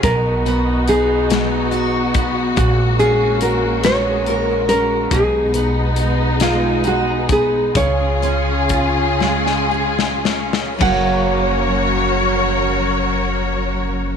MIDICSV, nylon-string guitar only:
0, 0, Header, 1, 2, 480
1, 0, Start_track
1, 0, Key_signature, 6, "major"
1, 0, Tempo, 847458
1, 20, Time_signature, 6, 3, 24, 8
1, 3380, Tempo, 890208
1, 4340, Tempo, 952381
1, 4820, Tempo, 1011804
1, 5300, Tempo, 1092896
1, 5780, Tempo, 1138520
1, 7197, End_track
2, 0, Start_track
2, 0, Title_t, "Nylon-string guitar"
2, 0, Program_c, 0, 24
2, 19, Note_on_c, 0, 70, 94
2, 501, Note_off_c, 0, 70, 0
2, 503, Note_on_c, 0, 68, 88
2, 1457, Note_on_c, 0, 66, 92
2, 1489, Note_off_c, 0, 68, 0
2, 1696, Note_on_c, 0, 68, 90
2, 1705, Note_off_c, 0, 66, 0
2, 1935, Note_off_c, 0, 68, 0
2, 1937, Note_on_c, 0, 70, 96
2, 2160, Note_off_c, 0, 70, 0
2, 2177, Note_on_c, 0, 73, 104
2, 2652, Note_off_c, 0, 73, 0
2, 2655, Note_on_c, 0, 70, 96
2, 2902, Note_on_c, 0, 68, 98
2, 2903, Note_off_c, 0, 70, 0
2, 3410, Note_off_c, 0, 68, 0
2, 3410, Note_on_c, 0, 66, 98
2, 3621, Note_off_c, 0, 66, 0
2, 3623, Note_on_c, 0, 65, 87
2, 3863, Note_off_c, 0, 65, 0
2, 3869, Note_on_c, 0, 66, 74
2, 4086, Note_off_c, 0, 66, 0
2, 4110, Note_on_c, 0, 68, 93
2, 4348, Note_on_c, 0, 73, 86
2, 4355, Note_off_c, 0, 68, 0
2, 5041, Note_off_c, 0, 73, 0
2, 5784, Note_on_c, 0, 78, 90
2, 7197, Note_off_c, 0, 78, 0
2, 7197, End_track
0, 0, End_of_file